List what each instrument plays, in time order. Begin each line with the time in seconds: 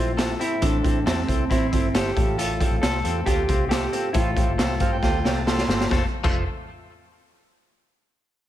Already playing: fingered electric bass A#1, clean electric guitar A2 C4 E4 F4 A4, transistor combo organ C4 E4 C5
0.17 transistor combo organ C4 E4 G4, clean electric guitar A4, snare, closed hi-hat
0.40 transistor combo organ C4 E4 G4, clean electric guitar C4 E4, closed hi-hat
0.61 fingered electric bass A1, clean electric guitar A2 D4 A4, transistor combo organ C4 E4 A4, kick, closed hi-hat
0.83 fingered electric bass A1, transistor combo organ C4 E4 A4, clean electric guitar C4, kick, closed hi-hat
1.06 fingered electric bass E2, transistor combo organ C4 E4 G4, clean electric guitar C4 A4, snare, closed hi-hat
1.28 fingered electric bass C2, clean electric guitar C4, transistor combo organ C4 E4 A4, kick, closed hi-hat
1.50 fingered electric bass A1, transistor combo organ C4 E4 C5, clean electric guitar C4 E4, kick, snare, closed hi-hat
1.72 fingered electric bass G1, clean electric guitar C4, transistor combo organ C4 E4 A4, kick, closed hi-hat
1.95 transistor combo organ C4 E4 C5, clean electric guitar G4 A4, snare, closed hi-hat
2.16 fingered electric bass A1, clean electric guitar A2, transistor combo organ F4 G4 A4, kick, closed hi-hat
2.38 clean electric guitar A2 F4 A4, closed hi-hat
2.60 clean electric guitar C4, transistor combo organ F4 G4 A4, kick, closed hi-hat
2.71 fingered electric bass A1
2.82 fingered electric bass C2, transistor combo organ F4 G4 C5, clean electric guitar A4, snare, closed hi-hat
3.04 fingered electric bass E2, clean electric guitar C4, transistor combo organ F4 G4 A4, closed hi-hat
3.26 fingered electric bass D2, transistor combo organ F4 G4 A4, clean electric guitar F4 G4, kick, snare, closed hi-hat
3.48 fingered electric bass C2, clean electric guitar C4, transistor combo organ F4 G4 C5, kick, closed hi-hat
3.69 transistor combo organ F4 G4 C5, clean electric guitar G4 A4, snare, closed hi-hat
3.93 clean electric guitar C4, transistor combo organ F4 G4 A4, closed hi-hat
4.13 fingered electric bass A1, clean electric guitar A2 F4 A4, transistor combo organ F4 G4 C5, kick, closed hi-hat
4.36 clean electric guitar C4, transistor combo organ F4 G4 C5, kick, closed hi-hat
4.47 fingered electric bass G1
4.58 fingered electric bass C2, transistor combo organ F4 G4 C5, clean electric guitar A4, snare, closed hi-hat
4.80 fingered electric bass G2, clean electric guitar C4, transistor combo organ F4 G4 C5 F5, kick, closed hi-hat
4.93 transistor combo organ G5
5.02 fingered electric bass D2, clean electric guitar F4, transistor combo organ F4 G4 A4 G5, kick, snare
5.24 fingered electric bass C2, clean electric guitar C4, transistor combo organ F4 G4 A4, snare
5.37 transistor combo organ A5
5.47 transistor combo organ F4 G4 A4 C6, clean electric guitar A4, snare
5.58 snare
5.68 fingered electric bass G1, clean electric guitar C4, transistor combo organ F4 G4 A4, snare
5.81 snare
5.90 fingered electric bass F1, clean electric guitar F3 A3 C4 F4 A4, transistor combo organ F4 A4 C5, kick, snare
6.24 fingered electric bass F1, clean electric guitar F3 A3 C4 F4 A4, transistor combo organ F4 A4 C5, kick, crash